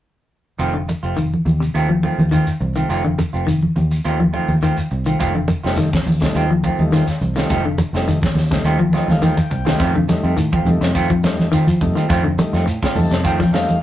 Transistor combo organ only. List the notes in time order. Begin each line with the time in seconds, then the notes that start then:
5.65 G3 A3 D#4
6.21 G3 A3 D#4
6.79 G3 A3 D#4
7.36 G3 A3 D#4
7.94 G3 A3 D#4
8.51 G3 A3 D#4
8.94 D#5
9.10 G3 A3 D#4 F5
9.24 G5
9.68 G3 A3 D#4
10.09 G3 A3 D#4
10.67 G3 A3 D#4
11.23 G3 A3 D#4
11.81 G3 A3 D#4
12.39 G3 A3 D#4
12.95 G3 A3 D#4 A5
13.25 G5
13.53 G3 A3 D#4 F5